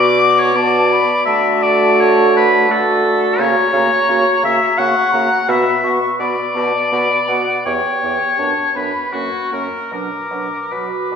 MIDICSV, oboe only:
0, 0, Header, 1, 2, 480
1, 0, Start_track
1, 0, Key_signature, 2, "minor"
1, 0, Tempo, 715137
1, 852, Time_signature, 3, 2, 24, 8
1, 1806, Tempo, 704225
1, 4686, Tempo, 737101
1, 6126, Tempo, 797872
1, 7346, End_track
2, 0, Start_track
2, 0, Title_t, "Oboe"
2, 0, Program_c, 0, 68
2, 0, Note_on_c, 0, 74, 126
2, 261, Note_on_c, 0, 73, 105
2, 271, Note_off_c, 0, 74, 0
2, 373, Note_on_c, 0, 74, 111
2, 383, Note_off_c, 0, 73, 0
2, 837, Note_off_c, 0, 74, 0
2, 841, Note_on_c, 0, 76, 113
2, 1092, Note_on_c, 0, 74, 106
2, 1102, Note_off_c, 0, 76, 0
2, 1343, Note_on_c, 0, 73, 116
2, 1353, Note_off_c, 0, 74, 0
2, 1577, Note_off_c, 0, 73, 0
2, 1586, Note_on_c, 0, 71, 111
2, 1823, Note_on_c, 0, 69, 107
2, 1833, Note_off_c, 0, 71, 0
2, 2290, Note_on_c, 0, 73, 116
2, 2300, Note_off_c, 0, 69, 0
2, 2999, Note_off_c, 0, 73, 0
2, 3004, Note_on_c, 0, 76, 111
2, 3231, Note_on_c, 0, 78, 105
2, 3241, Note_off_c, 0, 76, 0
2, 3718, Note_on_c, 0, 76, 109
2, 3728, Note_off_c, 0, 78, 0
2, 4029, Note_off_c, 0, 76, 0
2, 4201, Note_on_c, 0, 74, 102
2, 5139, Note_off_c, 0, 74, 0
2, 5170, Note_on_c, 0, 73, 90
2, 5891, Note_on_c, 0, 71, 69
2, 5901, Note_off_c, 0, 73, 0
2, 6127, Note_on_c, 0, 66, 67
2, 6136, Note_off_c, 0, 71, 0
2, 6361, Note_off_c, 0, 66, 0
2, 6367, Note_on_c, 0, 70, 64
2, 6595, Note_off_c, 0, 70, 0
2, 6608, Note_on_c, 0, 70, 61
2, 7086, Note_on_c, 0, 71, 51
2, 7095, Note_off_c, 0, 70, 0
2, 7346, Note_off_c, 0, 71, 0
2, 7346, End_track
0, 0, End_of_file